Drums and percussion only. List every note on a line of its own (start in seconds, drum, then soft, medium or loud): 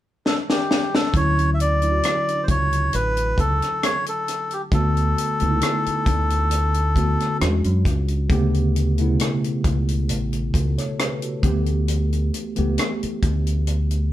0.26 snare medium
0.50 snare medium
0.71 snare medium
0.95 snare medium
1.14 kick medium
1.14 closed hi-hat medium
1.39 closed hi-hat soft
1.60 closed hi-hat medium
1.82 closed hi-hat soft
2.03 cross-stick medium
2.03 closed hi-hat medium
2.28 closed hi-hat soft
2.48 kick medium
2.48 closed hi-hat medium
2.73 closed hi-hat soft
2.93 closed hi-hat medium
3.17 closed hi-hat soft
3.38 kick medium
3.38 closed hi-hat medium
3.62 cross-stick soft
3.62 closed hi-hat soft
3.83 cross-stick loud
3.83 closed hi-hat medium
4.06 closed hi-hat soft
4.28 cross-stick soft
4.28 closed hi-hat medium
4.51 closed hi-hat soft
4.72 kick medium
4.72 closed hi-hat medium
4.97 closed hi-hat soft
5.18 closed hi-hat medium
5.40 closed hi-hat soft
5.61 cross-stick medium
5.61 closed hi-hat medium
5.86 closed hi-hat soft
6.06 kick medium
6.06 closed hi-hat medium
6.30 closed hi-hat soft
6.51 closed hi-hat medium
6.74 closed hi-hat soft
6.96 kick medium
6.96 closed hi-hat medium
7.20 cross-stick soft
7.20 closed hi-hat soft
7.41 cross-stick loud
7.41 closed hi-hat medium
7.64 closed hi-hat soft
7.85 kick medium
7.85 cross-stick soft
7.85 closed hi-hat medium
8.08 closed hi-hat soft
8.30 kick loud
8.30 closed hi-hat medium
8.54 closed hi-hat soft
8.76 closed hi-hat medium
8.98 closed hi-hat soft
9.20 cross-stick medium
9.20 closed hi-hat medium
9.44 closed hi-hat soft
9.64 kick medium
9.64 closed hi-hat medium
9.88 closed hi-hat soft
10.09 closed hi-hat medium
10.33 closed hi-hat soft
10.54 kick medium
10.54 closed hi-hat medium
10.78 cross-stick soft
10.78 closed hi-hat soft
10.99 cross-stick loud
10.99 closed hi-hat medium
11.22 closed hi-hat soft
11.43 kick medium
11.43 closed hi-hat medium
11.66 closed hi-hat soft
11.88 closed hi-hat medium
12.13 closed hi-hat soft
12.34 closed hi-hat medium
12.56 closed hi-hat soft
12.78 cross-stick medium
12.78 closed hi-hat medium
13.03 closed hi-hat soft
13.23 kick medium
13.23 closed hi-hat medium
13.47 closed hi-hat soft
13.67 closed hi-hat medium
13.91 closed hi-hat soft